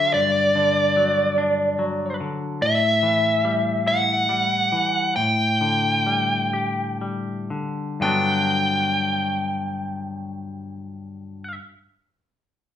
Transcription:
Already playing: D3 F#3 D4 E5
0.14 G2 D5
0.55 D3
0.96 F#3
1.38 D4
1.79 F#3
2.20 D3
2.62 A2 E5
3.03 E3
3.45 G3
3.86 E4 F#5
4.29 G3
4.72 E3
5.16 A2 G5
5.61 D3
6.06 G3
6.53 G4
7.01 G3
7.50 D3
8.00 G2 D3 F#3 B3 D4 G5

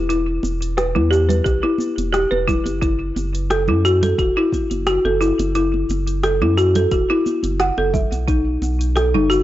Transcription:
Already playing: E1
0.09 E4, closed hi-hat, cabasa
0.43 E1, muted conga, cabasa
0.62 closed hi-hat, cabasa
0.77 B4, cross-stick, closed hi-hat, cabasa
0.95 E2 E4, high conga, low conga
1.11 G4, cabasa
1.29 B4, closed hi-hat, low conga, cabasa
1.44 B1 G4, kick, closed hi-hat, cabasa
1.63 E4, muted conga
1.78 high conga, cabasa
1.98 E1, closed hi-hat, high conga, cabasa
2.13 G4, cross-stick, closed hi-hat, cabasa
2.31 E1 B4, muted conga, high conga
2.48 E4, kick, low conga, cabasa
2.66 F#1, closed hi-hat, muted conga, cabasa
2.82 E4, kick, closed hi-hat, cabasa
3.16 F#1, muted conga, cabasa
3.35 closed hi-hat, cabasa
3.50 A4, cross-stick, closed hi-hat, cabasa
3.68 F#2 E4, low conga
3.85 F#4, cabasa
4.03 A4, closed hi-hat, low conga, cabasa
4.18 E1 F#4, kick, closed hi-hat, cabasa
4.37 E4
4.53 kick, muted conga, cabasa
4.71 F#1, closed hi-hat, high conga, cabasa
4.87 F#4, cross-stick, closed hi-hat, cabasa
5.05 F#1 A4, muted conga
5.21 E4, cabasa
5.39 F#1, closed hi-hat, muted conga, cabasa
5.55 E4, closed hi-hat, cabasa
5.74 muted conga
5.89 F#1, muted conga, cabasa
6.07 closed hi-hat, cabasa
6.23 A4, cross-stick, closed hi-hat, cabasa
6.41 F#2 E4, high conga, low conga
6.57 F#4, cabasa
6.75 A4, closed hi-hat, low conga, cabasa
6.91 E1 F#4, kick, closed hi-hat, cabasa
7.10 E4, muted conga
7.26 high conga, cabasa
7.43 F#1, closed hi-hat, high conga, cabasa
7.60 F#5, cross-stick, closed hi-hat, cabasa
7.78 F#1 A4, muted conga, high conga
7.94 E5, kick, low conga, cabasa
8.12 B1, closed hi-hat, muted conga, cabasa
8.28 D#4, kick, closed hi-hat, cabasa
8.62 B1, muted conga, cabasa
8.81 closed hi-hat, cabasa
8.96 A4, cross-stick, closed hi-hat, cabasa
9.14 F#1 D#4, low conga
9.30 F#4, cabasa

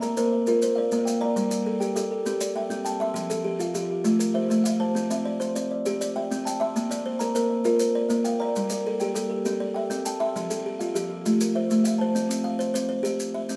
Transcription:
Already playing: D5
0.01 A#4 A#5, maracas
0.16 A#3 A#4 C5, maracas
0.32 C5
0.47 F4 A#4, maracas
0.62 C5, maracas
0.75 D5 F5
0.91 A#3, maracas
1.05 F5 G5, maracas
1.21 D5 A#5
1.36 G3, maracas
1.51 G3, maracas
1.66 A4
1.80 G4 G5, maracas
1.95 G3 G4 A4, maracas
2.11 A4
2.25 C4 G4, maracas
2.41 D5, maracas
2.56 E5 G5
2.70 C4, maracas
2.85 G5 A5, maracas
3.00 E5 C6
3.14 F3, maracas
3.30 F3 A4, maracas
3.44 G4
3.59 F4 F5, maracas
3.74 F3 F4 G4, maracas
3.90 G4
4.04 A3 F4, maracas
4.19 A#4, maracas
4.34 C5 E5
4.49 A3, maracas
4.64 E5 F5, maracas
4.80 C5 A5
4.95 C4, maracas
5.10 C4 E5, maracas
5.25 D5
5.40 C5 C6, maracas
5.55 C4 C5 D5, maracas
5.71 D5
5.85 G4 C5, maracas
6.01 D5, maracas
6.16 E5 G5
6.31 C4, maracas
6.45 G5 A5, maracas
6.60 E5 C6
6.76 A#3, maracas
6.90 A#3 D5, maracas
7.06 C5
7.19 A#4 A#5, maracas
7.35 A#3 A#4 C5, maracas
7.50 C5
7.65 F4 A#4, maracas
7.79 C5, maracas
7.95 D5
8.09 A#3, maracas
8.24 F5 G5, maracas
8.40 D5 A#5
8.56 G3, maracas
8.70 G3 A#4, maracas
8.87 A4
9.00 G4 G5, maracas
9.14 G3 G4 A4, maracas
9.30 A4
9.45 C4 G4, maracas
9.60 D5
9.74 E5 G5
9.90 C4, maracas
10.05 G5 A5, maracas
10.20 E5 C6
10.36 F3, maracas
10.50 F3 A4, maracas
10.66 G4
10.79 F4 F5, maracas
10.95 F3 F4 G4, maracas
11.10 G4
11.25 A3 F4, maracas
11.41 A#4, maracas
11.55 C5 E5
11.70 A3, maracas
11.84 E5 F5, maracas
11.98 C5 A5
12.15 C4, maracas
12.29 C4, maracas
12.44 F5
12.59 C5, maracas
12.74 C4 C5, maracas
12.89 C5
13.03 G4 C5, maracas
13.20 maracas
13.34 E5
13.49 C4, maracas

